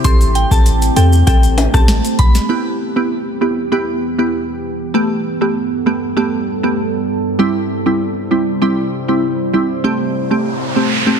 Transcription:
Already playing: ambient pad G4
0.04 808-style bass A1, ambient pad A3 C4, synth pluck C4 G4 A4, synth bell C6, kick, closed hi-hat, maracas
0.21 closed hi-hat, maracas
0.35 synth bell G5, closed hi-hat
0.51 808-style bass A1, synth pluck C4 G4 A4, synth bell A5, kick, maracas
0.66 closed hi-hat, maracas
0.82 closed hi-hat, maracas
0.96 808-style bass E2, synth pluck C4 G4 A4, synth bell G5, closed hi-hat, maracas
1.13 maracas
1.27 808-style bass A1, synth pluck C4 G4 A4, synth bell G5, kick, closed hi-hat, maracas
1.43 closed hi-hat, maracas
1.58 closed hi-hat, high timbale
1.74 808-style bass A1, synth pluck C4 G4 A4, synth bell A5, kick, cross-stick, maracas
1.88 snare, closed hi-hat, maracas
2.05 closed hi-hat, maracas
2.19 808-style bass A1, synth bell B5, kick, closed hi-hat
2.35 snare, maracas
2.49 ambient pad E2 E3 B3 G4, synth pluck B3 E4 G4
2.96 synth pluck B3 E4 G4
3.41 synth pluck B3 E4 G4
3.72 synth pluck B3 E4 G4
4.19 synth pluck B3 E4 G4
4.94 ambient pad G2 G3 A4, synth pluck A3 B3 G4
5.41 synth pluck A3 B3 G4
5.86 synth pluck A3 B3 G4
6.17 synth pluck A3 B3 G4
6.63 synth pluck A3 B3 G4
7.39 ambient pad C3 G3 E4 C5, synth pluck G3 C4 E4
7.86 synth pluck G3 C4 E4
8.31 synth pluck G3 C4 E4
8.62 synth pluck G3 C4 E4
9.08 synth pluck G3 C4 E4
9.53 synth pluck G3 C4 E4
9.84 ambient pad A2 A3 G4, synth pluck A3 C4 G4, noise sweep
10.31 synth pluck A3 C4 G4
10.76 synth pluck A3 C4 G4
11.06 synth pluck A3 C4 G4

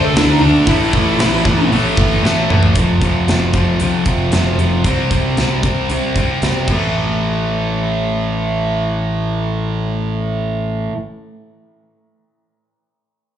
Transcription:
Already playing: overdriven electric guitar D3 A3 D4, distorted electric guitar D3 A3 D4
0.05 lead electric guitar A4
0.15 picked electric bass D2, overdriven electric guitar D3 A3 D4, lead electric guitar E4, snare, open hi-hat
0.31 lead electric guitar D#4
0.41 picked electric bass D2, overdriven electric guitar D3 A3 D4, lead electric guitar D4
0.67 picked electric bass A1, overdriven electric guitar A2 E3 A3, lead electric guitar E4, kick, open hi-hat
0.93 picked electric bass A1, overdriven electric guitar A2 E3 A3, kick
1.19 picked electric bass A1, overdriven electric guitar A2 E3 A3, snare, open hi-hat
1.45 picked electric bass A2, overdriven electric guitar A2 E3 A3, kick
1.71 picked electric bass A1, overdriven electric guitar A2 E3 A3, open hi-hat
1.97 picked electric bass G1, overdriven electric guitar A2 E3 A3, kick
2.23 picked electric bass A1, overdriven electric guitar A2 E3 A3, snare
2.50 picked electric bass A1, overdriven electric guitar A2 E3 A3, mid tom
2.63 floor tom
2.75 picked electric bass F1, overdriven electric guitar F2 C3 F3, kick, closed hi-hat
3.01 overdriven electric guitar F2 C3 F3, kick, closed hi-hat
3.28 picked electric bass F1, overdriven electric guitar F2 C3 F3, snare, closed hi-hat
3.53 picked electric bass F1, overdriven electric guitar F2 C3 F3, kick, closed hi-hat
3.80 picked electric bass C2, overdriven electric guitar F2 C3 F3, closed hi-hat
4.05 picked electric bass F1, overdriven electric guitar F2 C3 F3, kick, closed hi-hat
4.32 picked electric bass F1, overdriven electric guitar F2 C3 F3, snare, closed hi-hat
4.58 picked electric bass F1, overdriven electric guitar F2 C3 F3, closed hi-hat
4.84 picked electric bass C2, overdriven electric guitar C3 G3 C4, kick, closed hi-hat
5.11 picked electric bass C2, overdriven electric guitar C3 G3 C4, kick, closed hi-hat
5.37 picked electric bass C2, overdriven electric guitar C3 G3 C4, snare, closed hi-hat
5.63 overdriven electric guitar C3 G3 C4, kick, closed hi-hat
5.89 picked electric bass C2, overdriven electric guitar C3 G3 C4, closed hi-hat
6.15 picked electric bass C2, overdriven electric guitar C3 G3 C4, kick, closed hi-hat
6.42 picked electric bass C2, overdriven electric guitar C3 G3 C4, snare, closed hi-hat
6.67 picked electric bass A1, overdriven electric guitar A2 E3, kick, crash
6.72 overdriven electric guitar A3

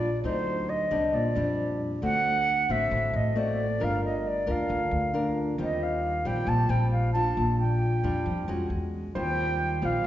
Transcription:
Already playing: upright bass A#1, nylon-string guitar A#2, flute D5
0.23 upright bass D2, nylon-string guitar D3 F#3 C4 D#4, flute C5
0.69 flute D#5
0.91 upright bass C2, nylon-string guitar G3 C4 D4
1.13 upright bass A#1, nylon-string guitar A#2, flute D5
1.35 upright bass F2, nylon-string guitar G3 C4 D4
2.02 upright bass D2, nylon-string guitar D3 A3 C4 F#4, flute F#5
2.69 upright bass A1, nylon-string guitar A3 C4 F#4, flute E5
2.91 upright bass A1, nylon-string guitar A2
3.13 upright bass A1, flute D#5
3.36 nylon-string guitar A3 C4 F#4, flute D5
3.80 upright bass G1, nylon-string guitar G3 D4 F4 A#4, flute F5
4.05 flute D#5
4.27 flute D5
4.47 upright bass D2, nylon-string guitar D4 F4 A#4, flute F5
4.69 upright bass D2, nylon-string guitar D3
4.91 upright bass D2
5.14 nylon-string guitar D4 F4 A#4
5.58 upright bass D#2, nylon-string guitar D#3 G3 C4 F4
5.62 flute D#5
5.82 flute F5
6.25 upright bass A#1, nylon-string guitar G3 C4 F4, flute G5
6.46 upright bass A#1, nylon-string guitar A#2, flute A5
6.69 upright bass A#1, nylon-string guitar G3 C4 F4, flute G5
6.91 flute F5
7.13 nylon-string guitar G3 D4 F4, flute A5
7.37 upright bass A#1, nylon-string guitar A#2
7.60 flute G5
8.04 upright bass F2, nylon-string guitar G3 D4 F4
8.26 upright bass F2, nylon-string guitar F3
8.48 upright bass F2, nylon-string guitar G#3 C#4 F#4
8.70 upright bass E2
9.15 upright bass D#2, nylon-string guitar D#3 G3 C4 F4, grand piano C5, flute G5
9.82 upright bass A#1, nylon-string guitar G3 C4 F4, flute F5

